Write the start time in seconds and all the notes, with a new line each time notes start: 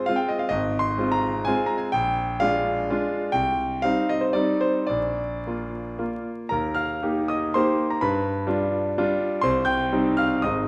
0.06 G#3 C4 F4 F5
0.16 G5
0.29 D#5
0.39 F5
0.49 G#1 D#5
0.79 C6
0.98 G#3 C4 F4
1.11 A#5
1.45 G#3 C4 F4 G#5
1.66 A#5
1.78 G#5
1.92 A#1 G5
2.40 G#3 D4 F4 F5
2.90 G#3 D4 F4
3.32 C2 G5
3.82 G3 C4 D#4 F5
4.09 D#5
4.21 C5
4.33 G3 C4 D#4 D5
4.61 C5
4.87 A#1 D5
5.47 A#3 F4
5.99 A#3 F4
6.49 D#2 A#4 A#5
6.74 F5 F6
7.02 A#3 D#4 G4
7.28 D#5 D#6
7.54 A#3 D#4 G4 C5 C6
7.90 A#5
8.01 G2 B4 B5
8.47 G3 D4 F4
8.98 G3 D4 F4
9.42 C2 C5 C6
9.65 G5 G6
9.92 G3 C4 D#4
10.17 F5 F6
10.42 G#1 G#3 C4 D#4 D#5 D#6